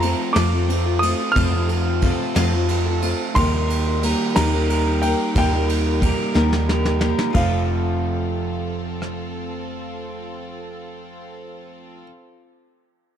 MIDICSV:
0, 0, Header, 1, 7, 480
1, 0, Start_track
1, 0, Tempo, 665188
1, 979, Time_signature, 6, 3, 24, 8
1, 9504, End_track
2, 0, Start_track
2, 0, Title_t, "Grand piano"
2, 0, Program_c, 0, 0
2, 0, Note_on_c, 0, 82, 78
2, 229, Note_off_c, 0, 82, 0
2, 237, Note_on_c, 0, 86, 94
2, 716, Note_on_c, 0, 87, 102
2, 743, Note_off_c, 0, 86, 0
2, 951, Note_on_c, 0, 89, 101
2, 976, Note_off_c, 0, 87, 0
2, 1897, Note_off_c, 0, 89, 0
2, 2418, Note_on_c, 0, 84, 109
2, 2871, Note_off_c, 0, 84, 0
2, 3144, Note_on_c, 0, 82, 106
2, 3620, Note_on_c, 0, 79, 83
2, 3637, Note_off_c, 0, 82, 0
2, 3844, Note_off_c, 0, 79, 0
2, 3882, Note_on_c, 0, 79, 92
2, 4563, Note_off_c, 0, 79, 0
2, 5300, Note_on_c, 0, 77, 81
2, 8674, Note_off_c, 0, 77, 0
2, 9504, End_track
3, 0, Start_track
3, 0, Title_t, "Steel-string acoustic guitar"
3, 0, Program_c, 1, 25
3, 19, Note_on_c, 1, 57, 61
3, 26, Note_on_c, 1, 60, 58
3, 35, Note_on_c, 1, 65, 64
3, 235, Note_off_c, 1, 57, 0
3, 236, Note_off_c, 1, 60, 0
3, 237, Note_on_c, 1, 53, 79
3, 240, Note_off_c, 1, 65, 0
3, 243, Note_on_c, 1, 57, 81
3, 245, Note_on_c, 1, 60, 83
3, 249, Note_on_c, 1, 65, 85
3, 252, Note_on_c, 1, 69, 88
3, 363, Note_off_c, 1, 69, 0
3, 368, Note_off_c, 1, 53, 0
3, 371, Note_off_c, 1, 57, 0
3, 372, Note_off_c, 1, 60, 0
3, 372, Note_on_c, 1, 69, 54
3, 374, Note_off_c, 1, 65, 0
3, 384, Note_on_c, 1, 65, 52
3, 395, Note_on_c, 1, 60, 48
3, 610, Note_off_c, 1, 69, 0
3, 611, Note_off_c, 1, 65, 0
3, 618, Note_on_c, 1, 69, 55
3, 620, Note_on_c, 1, 65, 49
3, 625, Note_off_c, 1, 60, 0
3, 633, Note_on_c, 1, 60, 44
3, 739, Note_off_c, 1, 60, 0
3, 739, Note_off_c, 1, 69, 0
3, 740, Note_off_c, 1, 65, 0
3, 741, Note_on_c, 1, 57, 62
3, 748, Note_on_c, 1, 60, 69
3, 750, Note_on_c, 1, 65, 73
3, 758, Note_on_c, 1, 69, 66
3, 974, Note_off_c, 1, 57, 0
3, 975, Note_off_c, 1, 60, 0
3, 977, Note_on_c, 1, 53, 89
3, 980, Note_off_c, 1, 65, 0
3, 980, Note_off_c, 1, 69, 0
3, 982, Note_on_c, 1, 57, 90
3, 984, Note_on_c, 1, 60, 88
3, 988, Note_on_c, 1, 69, 94
3, 989, Note_on_c, 1, 65, 90
3, 1083, Note_off_c, 1, 69, 0
3, 1091, Note_on_c, 1, 69, 55
3, 1098, Note_off_c, 1, 53, 0
3, 1098, Note_off_c, 1, 65, 0
3, 1101, Note_off_c, 1, 57, 0
3, 1102, Note_off_c, 1, 60, 0
3, 1107, Note_on_c, 1, 65, 51
3, 1117, Note_on_c, 1, 60, 46
3, 1326, Note_off_c, 1, 69, 0
3, 1335, Note_on_c, 1, 69, 51
3, 1338, Note_off_c, 1, 65, 0
3, 1344, Note_off_c, 1, 60, 0
3, 1347, Note_on_c, 1, 65, 49
3, 1352, Note_on_c, 1, 60, 42
3, 1457, Note_off_c, 1, 69, 0
3, 1458, Note_off_c, 1, 60, 0
3, 1459, Note_on_c, 1, 57, 65
3, 1464, Note_off_c, 1, 65, 0
3, 1467, Note_on_c, 1, 60, 66
3, 1475, Note_on_c, 1, 65, 67
3, 1480, Note_on_c, 1, 69, 69
3, 1689, Note_off_c, 1, 57, 0
3, 1694, Note_on_c, 1, 53, 98
3, 1696, Note_off_c, 1, 60, 0
3, 1698, Note_on_c, 1, 57, 99
3, 1699, Note_off_c, 1, 69, 0
3, 1701, Note_off_c, 1, 65, 0
3, 1705, Note_on_c, 1, 60, 107
3, 1708, Note_on_c, 1, 69, 99
3, 1709, Note_on_c, 1, 65, 104
3, 1799, Note_off_c, 1, 69, 0
3, 1808, Note_on_c, 1, 69, 61
3, 1813, Note_off_c, 1, 65, 0
3, 1817, Note_off_c, 1, 53, 0
3, 1818, Note_off_c, 1, 60, 0
3, 1819, Note_off_c, 1, 57, 0
3, 1822, Note_on_c, 1, 65, 61
3, 1827, Note_on_c, 1, 60, 50
3, 2054, Note_off_c, 1, 69, 0
3, 2061, Note_off_c, 1, 65, 0
3, 2062, Note_on_c, 1, 69, 65
3, 2064, Note_off_c, 1, 60, 0
3, 2071, Note_on_c, 1, 65, 53
3, 2081, Note_on_c, 1, 60, 52
3, 2172, Note_off_c, 1, 60, 0
3, 2176, Note_off_c, 1, 65, 0
3, 2176, Note_on_c, 1, 57, 72
3, 2181, Note_off_c, 1, 69, 0
3, 2181, Note_on_c, 1, 60, 75
3, 2184, Note_on_c, 1, 65, 80
3, 2197, Note_on_c, 1, 69, 76
3, 2419, Note_off_c, 1, 57, 0
3, 2421, Note_off_c, 1, 60, 0
3, 2423, Note_off_c, 1, 65, 0
3, 2427, Note_on_c, 1, 51, 95
3, 2429, Note_off_c, 1, 69, 0
3, 2429, Note_on_c, 1, 58, 93
3, 2434, Note_on_c, 1, 63, 97
3, 2435, Note_on_c, 1, 67, 97
3, 2436, Note_on_c, 1, 70, 102
3, 2536, Note_off_c, 1, 70, 0
3, 2544, Note_off_c, 1, 51, 0
3, 2544, Note_off_c, 1, 67, 0
3, 2544, Note_on_c, 1, 70, 62
3, 2545, Note_off_c, 1, 58, 0
3, 2548, Note_off_c, 1, 63, 0
3, 2552, Note_on_c, 1, 67, 52
3, 2568, Note_on_c, 1, 63, 47
3, 2777, Note_off_c, 1, 70, 0
3, 2786, Note_on_c, 1, 70, 51
3, 2787, Note_off_c, 1, 67, 0
3, 2795, Note_off_c, 1, 63, 0
3, 2798, Note_on_c, 1, 67, 48
3, 2807, Note_on_c, 1, 63, 42
3, 2903, Note_off_c, 1, 70, 0
3, 2909, Note_off_c, 1, 67, 0
3, 2914, Note_off_c, 1, 63, 0
3, 2915, Note_on_c, 1, 58, 55
3, 2922, Note_on_c, 1, 63, 70
3, 2925, Note_on_c, 1, 67, 73
3, 2932, Note_on_c, 1, 70, 69
3, 3135, Note_off_c, 1, 58, 0
3, 3140, Note_on_c, 1, 51, 85
3, 3143, Note_off_c, 1, 63, 0
3, 3144, Note_off_c, 1, 67, 0
3, 3144, Note_on_c, 1, 58, 82
3, 3149, Note_off_c, 1, 70, 0
3, 3151, Note_on_c, 1, 63, 87
3, 3153, Note_on_c, 1, 67, 95
3, 3157, Note_on_c, 1, 70, 92
3, 3260, Note_off_c, 1, 70, 0
3, 3261, Note_off_c, 1, 51, 0
3, 3263, Note_off_c, 1, 58, 0
3, 3266, Note_off_c, 1, 63, 0
3, 3267, Note_off_c, 1, 67, 0
3, 3269, Note_on_c, 1, 70, 62
3, 3283, Note_on_c, 1, 67, 55
3, 3289, Note_on_c, 1, 63, 51
3, 3494, Note_off_c, 1, 70, 0
3, 3502, Note_on_c, 1, 70, 57
3, 3505, Note_off_c, 1, 67, 0
3, 3513, Note_off_c, 1, 63, 0
3, 3514, Note_on_c, 1, 67, 52
3, 3521, Note_on_c, 1, 63, 42
3, 3622, Note_off_c, 1, 70, 0
3, 3627, Note_off_c, 1, 63, 0
3, 3628, Note_off_c, 1, 67, 0
3, 3633, Note_on_c, 1, 58, 72
3, 3636, Note_on_c, 1, 63, 69
3, 3649, Note_on_c, 1, 67, 72
3, 3658, Note_on_c, 1, 70, 69
3, 3858, Note_off_c, 1, 58, 0
3, 3864, Note_off_c, 1, 63, 0
3, 3865, Note_off_c, 1, 67, 0
3, 3865, Note_on_c, 1, 51, 85
3, 3866, Note_on_c, 1, 58, 91
3, 3870, Note_off_c, 1, 70, 0
3, 3872, Note_on_c, 1, 63, 100
3, 3873, Note_on_c, 1, 67, 95
3, 3878, Note_on_c, 1, 70, 87
3, 3973, Note_off_c, 1, 70, 0
3, 3982, Note_on_c, 1, 70, 56
3, 3983, Note_off_c, 1, 51, 0
3, 3984, Note_off_c, 1, 58, 0
3, 3986, Note_off_c, 1, 67, 0
3, 3987, Note_off_c, 1, 63, 0
3, 3994, Note_on_c, 1, 67, 48
3, 3998, Note_on_c, 1, 63, 50
3, 4213, Note_off_c, 1, 70, 0
3, 4221, Note_on_c, 1, 70, 48
3, 4222, Note_off_c, 1, 67, 0
3, 4230, Note_off_c, 1, 63, 0
3, 4231, Note_on_c, 1, 67, 53
3, 4245, Note_on_c, 1, 63, 49
3, 4330, Note_on_c, 1, 58, 60
3, 4331, Note_off_c, 1, 63, 0
3, 4335, Note_off_c, 1, 67, 0
3, 4339, Note_on_c, 1, 63, 61
3, 4342, Note_off_c, 1, 70, 0
3, 4344, Note_on_c, 1, 67, 70
3, 4349, Note_on_c, 1, 70, 63
3, 4571, Note_off_c, 1, 58, 0
3, 4577, Note_on_c, 1, 51, 99
3, 4578, Note_off_c, 1, 63, 0
3, 4579, Note_on_c, 1, 58, 107
3, 4581, Note_off_c, 1, 67, 0
3, 4586, Note_off_c, 1, 70, 0
3, 4586, Note_on_c, 1, 63, 107
3, 4590, Note_on_c, 1, 67, 92
3, 4593, Note_on_c, 1, 70, 107
3, 4685, Note_off_c, 1, 70, 0
3, 4694, Note_on_c, 1, 70, 72
3, 4700, Note_off_c, 1, 51, 0
3, 4701, Note_off_c, 1, 58, 0
3, 4703, Note_off_c, 1, 67, 0
3, 4704, Note_off_c, 1, 63, 0
3, 4712, Note_on_c, 1, 67, 63
3, 4718, Note_on_c, 1, 63, 52
3, 4923, Note_off_c, 1, 70, 0
3, 4930, Note_off_c, 1, 67, 0
3, 4931, Note_on_c, 1, 70, 67
3, 4939, Note_on_c, 1, 67, 57
3, 4943, Note_off_c, 1, 63, 0
3, 4951, Note_on_c, 1, 63, 51
3, 5045, Note_on_c, 1, 58, 70
3, 5047, Note_off_c, 1, 63, 0
3, 5055, Note_off_c, 1, 67, 0
3, 5056, Note_on_c, 1, 63, 72
3, 5057, Note_off_c, 1, 70, 0
3, 5063, Note_on_c, 1, 67, 77
3, 5066, Note_on_c, 1, 70, 80
3, 5269, Note_on_c, 1, 53, 88
3, 5285, Note_off_c, 1, 58, 0
3, 5288, Note_on_c, 1, 57, 99
3, 5296, Note_off_c, 1, 63, 0
3, 5299, Note_on_c, 1, 60, 99
3, 5303, Note_off_c, 1, 67, 0
3, 5304, Note_off_c, 1, 70, 0
3, 5314, Note_on_c, 1, 65, 101
3, 5324, Note_on_c, 1, 69, 106
3, 8672, Note_off_c, 1, 53, 0
3, 8691, Note_off_c, 1, 57, 0
3, 8702, Note_off_c, 1, 60, 0
3, 8717, Note_off_c, 1, 65, 0
3, 8727, Note_off_c, 1, 69, 0
3, 9504, End_track
4, 0, Start_track
4, 0, Title_t, "String section"
4, 0, Program_c, 2, 48
4, 0, Note_on_c, 2, 57, 77
4, 0, Note_on_c, 2, 60, 79
4, 0, Note_on_c, 2, 65, 73
4, 2391, Note_off_c, 2, 57, 0
4, 2392, Note_off_c, 2, 60, 0
4, 2395, Note_off_c, 2, 65, 0
4, 2433, Note_on_c, 2, 67, 84
4, 2437, Note_on_c, 2, 63, 77
4, 2437, Note_on_c, 2, 70, 81
4, 5279, Note_off_c, 2, 67, 0
4, 5281, Note_off_c, 2, 63, 0
4, 5282, Note_off_c, 2, 70, 0
4, 5300, Note_on_c, 2, 69, 81
4, 5302, Note_on_c, 2, 65, 76
4, 5305, Note_on_c, 2, 60, 69
4, 8674, Note_off_c, 2, 69, 0
4, 8677, Note_off_c, 2, 65, 0
4, 8680, Note_off_c, 2, 60, 0
4, 9504, End_track
5, 0, Start_track
5, 0, Title_t, "Clean electric guitar"
5, 0, Program_c, 3, 27
5, 0, Note_on_c, 3, 53, 81
5, 32, Note_on_c, 3, 69, 74
5, 238, Note_off_c, 3, 69, 0
5, 267, Note_off_c, 3, 53, 0
5, 270, Note_on_c, 3, 53, 73
5, 490, Note_on_c, 3, 57, 76
5, 500, Note_on_c, 3, 60, 82
5, 509, Note_on_c, 3, 65, 75
5, 516, Note_on_c, 3, 69, 94
5, 745, Note_off_c, 3, 53, 0
5, 973, Note_off_c, 3, 57, 0
5, 981, Note_off_c, 3, 60, 0
5, 985, Note_off_c, 3, 65, 0
5, 992, Note_off_c, 3, 69, 0
5, 1212, Note_on_c, 3, 69, 74
5, 1227, Note_on_c, 3, 65, 65
5, 1238, Note_on_c, 3, 60, 62
5, 1453, Note_off_c, 3, 60, 0
5, 1462, Note_off_c, 3, 65, 0
5, 1469, Note_off_c, 3, 69, 0
5, 1927, Note_on_c, 3, 57, 75
5, 1939, Note_on_c, 3, 60, 80
5, 1948, Note_on_c, 3, 65, 78
5, 1955, Note_on_c, 3, 69, 92
5, 2400, Note_off_c, 3, 57, 0
5, 2406, Note_off_c, 3, 60, 0
5, 2410, Note_off_c, 3, 65, 0
5, 2414, Note_off_c, 3, 69, 0
5, 2424, Note_on_c, 3, 55, 90
5, 2647, Note_on_c, 3, 70, 69
5, 2659, Note_on_c, 3, 67, 68
5, 2671, Note_off_c, 3, 55, 0
5, 2674, Note_on_c, 3, 55, 57
5, 2895, Note_off_c, 3, 55, 0
5, 2898, Note_on_c, 3, 55, 75
5, 2906, Note_off_c, 3, 67, 0
5, 2914, Note_off_c, 3, 70, 0
5, 3146, Note_off_c, 3, 55, 0
5, 3155, Note_on_c, 3, 55, 78
5, 3374, Note_off_c, 3, 55, 0
5, 3374, Note_on_c, 3, 58, 81
5, 3383, Note_on_c, 3, 55, 71
5, 3389, Note_on_c, 3, 67, 83
5, 3397, Note_on_c, 3, 70, 85
5, 3855, Note_off_c, 3, 58, 0
5, 3857, Note_off_c, 3, 55, 0
5, 3865, Note_on_c, 3, 55, 100
5, 3868, Note_off_c, 3, 67, 0
5, 3872, Note_off_c, 3, 70, 0
5, 4098, Note_on_c, 3, 70, 67
5, 4111, Note_on_c, 3, 67, 68
5, 4115, Note_off_c, 3, 55, 0
5, 4124, Note_on_c, 3, 55, 62
5, 4334, Note_off_c, 3, 55, 0
5, 4338, Note_off_c, 3, 67, 0
5, 4343, Note_on_c, 3, 55, 81
5, 4352, Note_off_c, 3, 70, 0
5, 4574, Note_off_c, 3, 55, 0
5, 4583, Note_on_c, 3, 55, 85
5, 4808, Note_off_c, 3, 55, 0
5, 4811, Note_on_c, 3, 58, 74
5, 4816, Note_on_c, 3, 55, 81
5, 4824, Note_on_c, 3, 67, 78
5, 4830, Note_on_c, 3, 70, 85
5, 5282, Note_off_c, 3, 58, 0
5, 5285, Note_off_c, 3, 55, 0
5, 5289, Note_off_c, 3, 67, 0
5, 5292, Note_off_c, 3, 70, 0
5, 9504, End_track
6, 0, Start_track
6, 0, Title_t, "Picked electric bass"
6, 0, Program_c, 4, 34
6, 0, Note_on_c, 4, 41, 107
6, 93, Note_off_c, 4, 41, 0
6, 259, Note_on_c, 4, 41, 97
6, 814, Note_off_c, 4, 41, 0
6, 985, Note_on_c, 4, 41, 106
6, 1538, Note_off_c, 4, 41, 0
6, 1702, Note_on_c, 4, 41, 96
6, 2256, Note_off_c, 4, 41, 0
6, 2427, Note_on_c, 4, 39, 110
6, 2979, Note_off_c, 4, 39, 0
6, 3151, Note_on_c, 4, 39, 94
6, 3702, Note_off_c, 4, 39, 0
6, 3863, Note_on_c, 4, 39, 109
6, 4418, Note_off_c, 4, 39, 0
6, 4585, Note_on_c, 4, 39, 105
6, 5139, Note_off_c, 4, 39, 0
6, 5302, Note_on_c, 4, 29, 103
6, 8676, Note_off_c, 4, 29, 0
6, 9504, End_track
7, 0, Start_track
7, 0, Title_t, "Drums"
7, 16, Note_on_c, 9, 51, 80
7, 89, Note_off_c, 9, 51, 0
7, 257, Note_on_c, 9, 51, 90
7, 259, Note_on_c, 9, 38, 122
7, 329, Note_off_c, 9, 51, 0
7, 331, Note_off_c, 9, 38, 0
7, 503, Note_on_c, 9, 51, 69
7, 575, Note_off_c, 9, 51, 0
7, 741, Note_on_c, 9, 51, 78
7, 813, Note_off_c, 9, 51, 0
7, 981, Note_on_c, 9, 51, 92
7, 983, Note_on_c, 9, 36, 100
7, 1053, Note_off_c, 9, 51, 0
7, 1055, Note_off_c, 9, 36, 0
7, 1219, Note_on_c, 9, 51, 65
7, 1291, Note_off_c, 9, 51, 0
7, 1456, Note_on_c, 9, 51, 74
7, 1462, Note_on_c, 9, 36, 85
7, 1528, Note_off_c, 9, 51, 0
7, 1535, Note_off_c, 9, 36, 0
7, 1700, Note_on_c, 9, 51, 106
7, 1702, Note_on_c, 9, 38, 124
7, 1772, Note_off_c, 9, 51, 0
7, 1774, Note_off_c, 9, 38, 0
7, 1938, Note_on_c, 9, 51, 73
7, 2011, Note_off_c, 9, 51, 0
7, 2181, Note_on_c, 9, 51, 77
7, 2253, Note_off_c, 9, 51, 0
7, 2422, Note_on_c, 9, 51, 99
7, 2426, Note_on_c, 9, 36, 108
7, 2494, Note_off_c, 9, 51, 0
7, 2498, Note_off_c, 9, 36, 0
7, 2670, Note_on_c, 9, 51, 77
7, 2742, Note_off_c, 9, 51, 0
7, 2907, Note_on_c, 9, 51, 89
7, 2980, Note_off_c, 9, 51, 0
7, 3144, Note_on_c, 9, 51, 108
7, 3146, Note_on_c, 9, 38, 121
7, 3216, Note_off_c, 9, 51, 0
7, 3219, Note_off_c, 9, 38, 0
7, 3390, Note_on_c, 9, 51, 75
7, 3462, Note_off_c, 9, 51, 0
7, 3624, Note_on_c, 9, 51, 79
7, 3696, Note_off_c, 9, 51, 0
7, 3864, Note_on_c, 9, 51, 98
7, 3867, Note_on_c, 9, 36, 103
7, 3936, Note_off_c, 9, 51, 0
7, 3940, Note_off_c, 9, 36, 0
7, 4109, Note_on_c, 9, 51, 75
7, 4181, Note_off_c, 9, 51, 0
7, 4345, Note_on_c, 9, 36, 79
7, 4345, Note_on_c, 9, 51, 71
7, 4417, Note_off_c, 9, 36, 0
7, 4417, Note_off_c, 9, 51, 0
7, 4584, Note_on_c, 9, 38, 65
7, 4656, Note_off_c, 9, 38, 0
7, 4709, Note_on_c, 9, 38, 64
7, 4781, Note_off_c, 9, 38, 0
7, 4829, Note_on_c, 9, 38, 73
7, 4901, Note_off_c, 9, 38, 0
7, 4945, Note_on_c, 9, 38, 78
7, 5017, Note_off_c, 9, 38, 0
7, 5058, Note_on_c, 9, 38, 99
7, 5130, Note_off_c, 9, 38, 0
7, 5185, Note_on_c, 9, 38, 90
7, 5257, Note_off_c, 9, 38, 0
7, 5299, Note_on_c, 9, 49, 88
7, 5303, Note_on_c, 9, 36, 95
7, 5371, Note_off_c, 9, 49, 0
7, 5375, Note_off_c, 9, 36, 0
7, 6508, Note_on_c, 9, 37, 62
7, 6580, Note_off_c, 9, 37, 0
7, 9504, End_track
0, 0, End_of_file